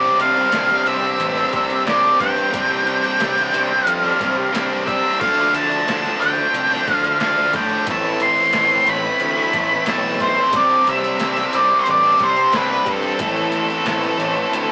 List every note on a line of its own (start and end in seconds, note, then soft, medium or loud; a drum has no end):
0.00 0.11 C2 loud
0.00 0.17 C3 loud
0.00 0.38 G3 medium
0.00 0.87 G3 loud
0.00 0.17 G3 medium
0.00 0.36 C4 loud
0.00 0.85 C4 loud
0.00 0.18 C4 medium
0.00 0.34 D4 loud
0.00 0.19 D4 medium
0.00 0.20 D5 loud
0.17 0.44 C2 loud
0.17 0.49 C3 medium
0.17 0.50 G3 medium
0.17 0.51 C4 medium
0.17 0.52 D4 medium
0.17 0.87 F5 loud
0.17 closed hi-hat medium
0.35 0.52 G3 medium
0.35 0.52 C4 medium
0.35 0.53 D4 medium
0.35 closed hi-hat medium
0.49 0.77 C2 medium
0.49 0.83 C3 loud
0.49 0.84 G3 loud
0.49 0.84 C4 loud
0.49 0.84 D4 loud
0.49 snare loud
0.49 closed hi-hat loud
0.68 1.02 G3 medium
0.68 1.01 C4 medium
0.68 1.01 D4 medium
0.68 snare soft
0.68 closed hi-hat soft
0.83 1.11 C2 medium
0.83 1.35 C3 medium
0.83 1.00 G3 medium
0.83 0.99 C4 medium
0.83 0.98 D4 medium
0.83 closed hi-hat medium
0.87 1.85 C3 medium
0.87 1.83 E5 loud
0.99 1.35 G3 medium
0.99 1.34 C4 medium
0.99 1.34 D4 medium
0.99 muted overdriven electric guitar stroke medium
1.18 1.43 A1 loud
1.18 closed hi-hat loud
1.34 1.51 G3 medium
1.34 1.52 C4 medium
1.34 1.53 D4 medium
1.51 1.77 C2 medium
1.51 1.84 C3 medium
1.51 1.69 G3 medium
1.51 1.68 C4 medium
1.51 1.67 D4 medium
1.51 kick medium
1.51 closed hi-hat medium
1.68 1.85 G3 medium
1.68 1.85 C4 medium
1.68 1.87 D4 medium
1.68 muted overdriven electric guitar stroke medium
1.68 closed hi-hat soft
1.85 2.10 C2 medium
1.85 2.17 C3 loud
1.85 2.18 G3 loud
1.85 2.19 C4 loud
1.85 2.20 D4 loud
1.85 snare loud
1.85 closed hi-hat loud
1.89 2.19 D5 loud
2.18 2.44 G2 loud
2.18 2.50 C3 medium
2.18 2.35 G3 medium
2.18 2.35 C4 medium
2.18 2.34 D4 medium
2.18 3.88 G5 loud
2.18 kick loud
2.18 closed hi-hat medium
2.35 2.52 G3 medium
2.35 2.52 C4 medium
2.35 2.54 D4 medium
2.35 closed hi-hat soft
2.52 3.02 C2 loud
2.52 2.83 C3 loud
2.52 2.70 G3 loud
2.52 2.69 C4 loud
2.52 2.68 D4 loud
2.52 kick loud
2.52 closed hi-hat loud
2.69 2.84 G3 medium
2.69 2.85 C4 medium
2.69 2.86 D4 medium
2.84 3.18 C3 medium
2.84 3.19 G3 medium
2.84 3.20 C4 medium
2.84 3.22 D4 medium
2.84 closed hi-hat medium
3.03 3.20 G3 medium
3.03 3.20 C4 medium
3.03 3.23 D4 medium
3.03 closed hi-hat medium
3.19 3.45 C2 loud
3.19 3.52 C3 loud
3.19 3.53 G3 loud
3.19 3.54 C4 loud
3.19 3.55 D4 loud
3.19 snare loud
3.19 closed hi-hat loud
3.36 3.70 G3 medium
3.36 3.70 C4 medium
3.36 3.69 D4 medium
3.36 snare soft
3.36 closed hi-hat medium
3.53 3.78 C2 medium
3.53 4.03 C3 medium
3.53 3.71 G3 medium
3.53 3.69 C4 medium
3.53 3.68 D4 loud
3.53 closed hi-hat medium
3.69 4.03 G3 medium
3.69 4.03 C4 medium
3.69 4.01 D4 medium
3.69 muted overdriven electric guitar stroke medium
3.87 4.11 F2 loud
3.87 4.83 F5 loud
3.87 closed hi-hat loud
4.03 4.19 G3 medium
4.03 4.20 C4 medium
4.03 4.20 D4 medium
4.19 4.45 C2 medium
4.19 4.51 C3 medium
4.19 4.37 G3 medium
4.19 4.36 C4 medium
4.19 4.35 D4 medium
4.19 kick medium
4.19 closed hi-hat medium
4.36 4.52 G3 medium
4.36 4.52 C4 medium
4.36 4.53 D4 medium
4.36 muted overdriven electric guitar stroke soft
4.52 5.02 C2 medium
4.52 4.84 C3 loud
4.52 4.85 G3 loud
4.52 4.86 C4 loud
4.52 4.86 D4 loud
4.52 snare loud
4.52 closed hi-hat loud
4.85 5.17 C3 medium
4.85 5.04 G3 medium
4.85 5.03 C4 medium
4.85 5.01 D4 medium
4.85 5.18 E5 medium
4.85 kick loud
4.85 closed hi-hat medium
5.02 5.19 G3 medium
5.02 5.18 C4 medium
5.02 5.18 D4 medium
5.19 5.45 D2 loud
5.19 5.52 D3 loud
5.19 5.37 F3 loud
5.19 5.37 A3 loud
5.19 5.35 D4 loud
5.19 5.55 F5 loud
5.19 kick loud
5.19 crash loud
5.37 5.53 F3 medium
5.37 5.55 A3 medium
5.37 5.55 D4 medium
5.54 5.78 D2 loud
5.54 5.85 D3 medium
5.54 5.86 F3 medium
5.54 5.89 A3 medium
5.54 5.88 D4 medium
5.54 6.17 A5 loud
5.54 closed hi-hat medium
5.70 5.87 F3 medium
5.70 5.89 A3 medium
5.70 5.89 D4 medium
5.70 closed hi-hat medium
5.87 6.12 D2 medium
5.87 6.19 D3 loud
5.87 6.20 F3 loud
5.87 6.21 A3 loud
5.87 6.22 D4 loud
5.87 snare loud
5.87 closed hi-hat loud
6.03 6.37 F3 medium
6.03 6.37 A3 medium
6.03 6.37 D4 medium
6.03 snare soft
6.03 closed hi-hat medium
6.18 6.45 D2 medium
6.18 6.70 D3 medium
6.18 6.38 F3 medium
6.18 6.37 A3 medium
6.18 7.17 D4 loud
6.18 6.92 G5 loud
6.18 closed hi-hat medium
6.23 6.36 D4 medium
6.37 6.72 F3 medium
6.37 6.71 A3 medium
6.37 6.69 D4 medium
6.37 muted overdriven electric guitar stroke medium
6.54 6.78 C2 loud
6.54 closed hi-hat loud
6.71 6.86 F3 medium
6.71 6.87 A3 medium
6.71 6.88 D4 medium
6.87 7.12 D2 medium
6.87 7.18 D3 medium
6.87 7.05 F3 medium
6.87 7.04 A3 medium
6.87 7.03 D4 medium
6.87 kick medium
6.87 closed hi-hat medium
6.92 7.21 F5 loud
7.04 7.20 F3 medium
7.04 7.20 A3 medium
7.04 7.21 D4 medium
7.04 muted overdriven electric guitar stroke medium
7.04 closed hi-hat medium
7.20 7.45 D2 medium
7.20 7.52 D3 medium
7.20 7.53 F3 loud
7.20 7.54 A3 loud
7.20 7.54 D4 loud
7.20 7.55 F5 medium
7.20 snare loud
7.20 closed hi-hat loud
7.53 7.78 A2 loud
7.53 7.85 D3 medium
7.53 7.72 F3 medium
7.53 7.70 A3 medium
7.53 7.69 D4 medium
7.53 7.86 G5 loud
7.53 kick loud
7.53 snare soft
7.53 closed hi-hat medium
7.69 7.86 F3 medium
7.69 7.86 A3 medium
7.69 7.85 D4 medium
7.69 closed hi-hat soft
7.86 8.36 A1 loud
7.86 8.37 A2 medium
7.86 8.18 E3 loud
7.86 8.04 A3 loud
7.86 8.03 C4 loud
7.86 8.02 E4 loud
7.86 kick loud
7.86 closed hi-hat loud
7.90 8.20 A5 loud
8.03 8.19 A3 medium
8.03 8.20 C4 medium
8.03 8.20 E4 medium
8.19 8.52 E3 medium
8.19 8.53 A3 medium
8.19 8.54 C4 medium
8.19 8.54 E4 medium
8.19 8.89 C6 loud
8.19 closed hi-hat medium
8.37 8.57 C4 medium
8.37 8.57 E4 medium
8.37 closed hi-hat medium
8.41 8.55 A3 medium
8.52 8.78 A1 medium
8.52 9.20 A2 medium
8.52 8.84 E3 loud
8.52 8.85 A3 loud
8.52 8.87 C4 loud
8.52 8.87 E4 loud
8.52 snare loud
8.52 closed hi-hat loud
8.70 9.05 C4 medium
8.70 9.04 E4 medium
8.70 closed hi-hat medium
8.75 9.05 A3 medium
8.85 9.11 A1 medium
8.85 9.36 E3 medium
8.85 9.03 A3 medium
8.85 9.02 C4 medium
8.85 9.00 E4 medium
8.85 closed hi-hat medium
8.90 9.86 A2 medium
8.90 9.91 B5 loud
9.02 9.36 A3 medium
9.02 9.37 C4 medium
9.02 9.34 E4 medium
9.02 muted overdriven electric guitar stroke soft
9.20 9.45 D2 loud
9.20 closed hi-hat loud
9.36 9.52 A3 medium
9.36 9.53 C4 medium
9.36 9.53 E4 medium
9.52 9.78 A1 medium
9.52 9.86 E3 medium
9.52 9.70 A3 medium
9.52 9.71 C4 medium
9.52 9.69 E4 medium
9.52 kick medium
9.52 closed hi-hat medium
9.70 9.87 A3 medium
9.70 9.88 C4 medium
9.70 9.88 E4 medium
9.70 muted overdriven electric guitar stroke medium
9.86 10.36 B1 medium
9.86 10.51 A2 loud
9.86 10.18 E3 loud
9.86 10.19 A3 loud
9.86 10.20 C4 loud
9.86 10.21 E4 loud
9.86 10.22 A5 loud
9.86 snare loud
9.86 closed hi-hat loud
10.19 10.51 E3 medium
10.19 10.37 A3 medium
10.19 10.36 C4 medium
10.19 10.35 E4 medium
10.19 10.55 C5 loud
10.19 kick medium
10.19 snare soft
10.19 closed hi-hat medium
10.36 10.52 A3 medium
10.36 10.53 C4 medium
10.36 10.51 E4 medium
10.52 10.78 C2 loud
10.52 10.83 C3 loud
10.52 10.69 G3 loud
10.52 10.69 C4 loud
10.52 10.67 D4 loud
10.52 kick loud
10.52 closed hi-hat loud
10.56 10.89 D5 loud
10.68 10.85 G3 medium
10.68 10.86 C4 medium
10.68 10.86 D4 medium
10.85 11.11 C2 loud
10.85 11.17 C3 medium
10.85 11.18 G3 medium
10.85 11.20 C4 medium
10.85 11.20 D4 medium
10.85 closed hi-hat medium
10.89 11.55 E5 loud
11.03 11.20 G3 medium
11.03 11.22 C4 medium
11.03 11.22 D4 medium
11.03 closed hi-hat medium
11.19 11.45 C2 medium
11.19 11.52 C3 loud
11.19 11.53 G3 loud
11.19 11.55 C4 loud
11.19 11.55 D4 loud
11.19 snare loud
11.19 closed hi-hat loud
11.36 11.71 G3 medium
11.36 11.71 C4 medium
11.36 11.70 D4 medium
11.36 snare soft
11.36 closed hi-hat soft
11.53 11.78 C2 loud
11.53 12.03 C3 medium
11.53 11.70 G3 medium
11.53 11.69 C4 loud
11.53 11.68 D4 loud
11.53 11.82 D5 loud
11.53 closed hi-hat medium
11.57 12.52 C3 medium
11.69 12.04 G3 medium
11.69 12.03 C4 medium
11.69 12.01 D4 medium
11.69 muted overdriven electric guitar stroke medium
11.79 11.86 C5 medium
11.86 12.12 A1 loud
11.86 closed hi-hat loud
11.90 12.23 D5 loud
12.02 12.19 G3 medium
12.02 12.19 C4 medium
12.02 12.20 D4 medium
12.19 12.44 C2 medium
12.19 12.51 C3 medium
12.19 12.37 G3 medium
12.19 12.36 C4 medium
12.19 12.34 D4 medium
12.19 kick medium
12.19 closed hi-hat medium
12.23 12.56 C5 loud
12.35 12.52 G3 medium
12.35 12.53 C4 medium
12.35 12.54 D4 medium
12.35 muted overdriven electric guitar stroke medium
12.35 closed hi-hat soft
12.52 12.78 C2 loud
12.52 12.84 C3 loud
12.52 12.85 G3 loud
12.52 12.86 C4 loud
12.52 12.87 D4 loud
12.52 snare loud
12.52 closed hi-hat loud
12.56 12.89 B4 loud
12.85 13.11 G2 loud
12.85 13.17 C3 medium
12.85 13.04 G3 medium
12.85 13.03 C4 medium
12.85 13.02 D4 medium
12.85 kick loud
12.85 closed hi-hat medium
12.91 14.72 A4 medium
13.02 13.19 G3 medium
13.02 13.18 C4 medium
13.02 13.18 D4 medium
13.02 closed hi-hat medium
13.19 13.69 A1 loud
13.19 13.70 A2 loud
13.19 13.52 E3 loud
13.19 13.38 A3 loud
13.19 13.36 C4 loud
13.19 13.35 E4 loud
13.19 kick loud
13.19 closed hi-hat loud
13.36 13.53 A3 medium
13.36 13.54 C4 medium
13.36 13.54 E4 medium
13.52 13.86 E3 medium
13.52 13.86 A3 medium
13.52 13.87 C4 loud
13.52 13.88 E4 loud
13.52 closed hi-hat medium
13.68 13.87 A3 medium
13.68 13.88 C4 medium
13.68 13.89 E4 medium
13.68 closed hi-hat medium
13.86 14.10 A1 medium
13.86 14.53 A2 loud
13.86 14.18 E3 loud
13.86 14.19 A3 loud
13.86 14.20 C4 loud
13.86 14.21 E4 loud
13.86 snare loud
13.86 closed hi-hat loud
14.02 14.36 A3 medium
14.02 14.36 C4 medium
14.02 14.36 E4 medium
14.02 snare soft
14.02 closed hi-hat medium
14.18 14.43 A1 medium
14.18 14.72 A2 medium
14.18 14.70 E3 medium
14.18 14.37 A3 medium
14.18 14.35 C4 medium
14.18 14.35 E4 medium
14.18 closed hi-hat medium
14.36 14.70 A3 medium
14.36 14.69 C4 medium
14.36 14.67 E4 medium
14.36 muted overdriven electric guitar stroke medium
14.53 14.72 D2 medium
14.53 closed hi-hat loud
14.69 14.72 E4 medium